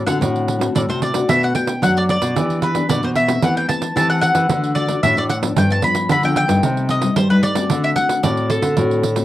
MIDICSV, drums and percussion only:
0, 0, Header, 1, 2, 480
1, 0, Start_track
1, 0, Tempo, 534283
1, 1157, Time_signature, 4, 2, 24, 8
1, 8309, End_track
2, 0, Start_track
2, 0, Title_t, "Pandeiro"
2, 66, Note_on_c, 9, 54, 71
2, 156, Note_off_c, 9, 54, 0
2, 197, Note_on_c, 9, 54, 70
2, 287, Note_off_c, 9, 54, 0
2, 320, Note_on_c, 9, 54, 29
2, 410, Note_off_c, 9, 54, 0
2, 433, Note_on_c, 9, 54, 56
2, 523, Note_off_c, 9, 54, 0
2, 550, Note_on_c, 9, 54, 65
2, 640, Note_off_c, 9, 54, 0
2, 678, Note_on_c, 9, 54, 76
2, 768, Note_off_c, 9, 54, 0
2, 804, Note_on_c, 9, 54, 32
2, 894, Note_off_c, 9, 54, 0
2, 915, Note_on_c, 9, 54, 54
2, 1004, Note_off_c, 9, 54, 0
2, 1024, Note_on_c, 9, 54, 69
2, 1114, Note_off_c, 9, 54, 0
2, 1157, Note_on_c, 9, 54, 81
2, 1247, Note_off_c, 9, 54, 0
2, 1284, Note_on_c, 9, 54, 30
2, 1374, Note_off_c, 9, 54, 0
2, 1390, Note_on_c, 9, 54, 59
2, 1480, Note_off_c, 9, 54, 0
2, 1503, Note_on_c, 9, 54, 63
2, 1593, Note_off_c, 9, 54, 0
2, 1641, Note_on_c, 9, 54, 75
2, 1731, Note_off_c, 9, 54, 0
2, 1768, Note_on_c, 9, 54, 36
2, 1858, Note_off_c, 9, 54, 0
2, 1879, Note_on_c, 9, 54, 55
2, 1969, Note_off_c, 9, 54, 0
2, 1992, Note_on_c, 9, 54, 68
2, 2082, Note_off_c, 9, 54, 0
2, 2123, Note_on_c, 9, 54, 76
2, 2212, Note_off_c, 9, 54, 0
2, 2246, Note_on_c, 9, 54, 30
2, 2336, Note_off_c, 9, 54, 0
2, 2354, Note_on_c, 9, 54, 60
2, 2444, Note_off_c, 9, 54, 0
2, 2468, Note_on_c, 9, 54, 59
2, 2558, Note_off_c, 9, 54, 0
2, 2600, Note_on_c, 9, 54, 84
2, 2690, Note_off_c, 9, 54, 0
2, 2720, Note_on_c, 9, 54, 30
2, 2810, Note_off_c, 9, 54, 0
2, 2834, Note_on_c, 9, 54, 51
2, 2924, Note_off_c, 9, 54, 0
2, 2950, Note_on_c, 9, 54, 73
2, 3040, Note_off_c, 9, 54, 0
2, 3076, Note_on_c, 9, 54, 81
2, 3166, Note_off_c, 9, 54, 0
2, 3206, Note_on_c, 9, 54, 34
2, 3296, Note_off_c, 9, 54, 0
2, 3317, Note_on_c, 9, 54, 62
2, 3406, Note_off_c, 9, 54, 0
2, 3429, Note_on_c, 9, 54, 59
2, 3519, Note_off_c, 9, 54, 0
2, 3564, Note_on_c, 9, 54, 72
2, 3654, Note_off_c, 9, 54, 0
2, 3685, Note_on_c, 9, 54, 35
2, 3775, Note_off_c, 9, 54, 0
2, 3795, Note_on_c, 9, 54, 60
2, 3885, Note_off_c, 9, 54, 0
2, 3906, Note_on_c, 9, 54, 68
2, 3996, Note_off_c, 9, 54, 0
2, 4038, Note_on_c, 9, 54, 75
2, 4128, Note_off_c, 9, 54, 0
2, 4165, Note_on_c, 9, 54, 34
2, 4255, Note_off_c, 9, 54, 0
2, 4273, Note_on_c, 9, 54, 51
2, 4363, Note_off_c, 9, 54, 0
2, 4389, Note_on_c, 9, 54, 58
2, 4479, Note_off_c, 9, 54, 0
2, 4521, Note_on_c, 9, 54, 78
2, 4611, Note_off_c, 9, 54, 0
2, 4646, Note_on_c, 9, 54, 31
2, 4735, Note_off_c, 9, 54, 0
2, 4757, Note_on_c, 9, 54, 53
2, 4847, Note_off_c, 9, 54, 0
2, 4877, Note_on_c, 9, 54, 72
2, 4967, Note_off_c, 9, 54, 0
2, 5000, Note_on_c, 9, 54, 82
2, 5090, Note_off_c, 9, 54, 0
2, 5124, Note_on_c, 9, 54, 29
2, 5214, Note_off_c, 9, 54, 0
2, 5232, Note_on_c, 9, 54, 60
2, 5322, Note_off_c, 9, 54, 0
2, 5344, Note_on_c, 9, 54, 66
2, 5433, Note_off_c, 9, 54, 0
2, 5475, Note_on_c, 9, 54, 75
2, 5564, Note_off_c, 9, 54, 0
2, 5599, Note_on_c, 9, 54, 36
2, 5689, Note_off_c, 9, 54, 0
2, 5715, Note_on_c, 9, 54, 60
2, 5805, Note_off_c, 9, 54, 0
2, 5830, Note_on_c, 9, 54, 68
2, 5920, Note_off_c, 9, 54, 0
2, 5958, Note_on_c, 9, 54, 75
2, 6048, Note_off_c, 9, 54, 0
2, 6083, Note_on_c, 9, 54, 32
2, 6173, Note_off_c, 9, 54, 0
2, 6189, Note_on_c, 9, 54, 53
2, 6278, Note_off_c, 9, 54, 0
2, 6304, Note_on_c, 9, 54, 60
2, 6393, Note_off_c, 9, 54, 0
2, 6434, Note_on_c, 9, 54, 75
2, 6524, Note_off_c, 9, 54, 0
2, 6562, Note_on_c, 9, 54, 30
2, 6652, Note_off_c, 9, 54, 0
2, 6673, Note_on_c, 9, 54, 51
2, 6763, Note_off_c, 9, 54, 0
2, 6786, Note_on_c, 9, 54, 71
2, 6876, Note_off_c, 9, 54, 0
2, 6915, Note_on_c, 9, 54, 81
2, 7005, Note_off_c, 9, 54, 0
2, 7040, Note_on_c, 9, 54, 30
2, 7130, Note_off_c, 9, 54, 0
2, 7151, Note_on_c, 9, 54, 61
2, 7241, Note_off_c, 9, 54, 0
2, 7271, Note_on_c, 9, 54, 61
2, 7361, Note_off_c, 9, 54, 0
2, 7399, Note_on_c, 9, 54, 79
2, 7489, Note_off_c, 9, 54, 0
2, 7522, Note_on_c, 9, 54, 36
2, 7612, Note_off_c, 9, 54, 0
2, 7633, Note_on_c, 9, 54, 58
2, 7723, Note_off_c, 9, 54, 0
2, 7748, Note_on_c, 9, 54, 64
2, 7838, Note_off_c, 9, 54, 0
2, 7876, Note_on_c, 9, 54, 68
2, 7966, Note_off_c, 9, 54, 0
2, 8005, Note_on_c, 9, 54, 29
2, 8095, Note_off_c, 9, 54, 0
2, 8116, Note_on_c, 9, 54, 61
2, 8206, Note_off_c, 9, 54, 0
2, 8229, Note_on_c, 9, 54, 63
2, 8309, Note_off_c, 9, 54, 0
2, 8309, End_track
0, 0, End_of_file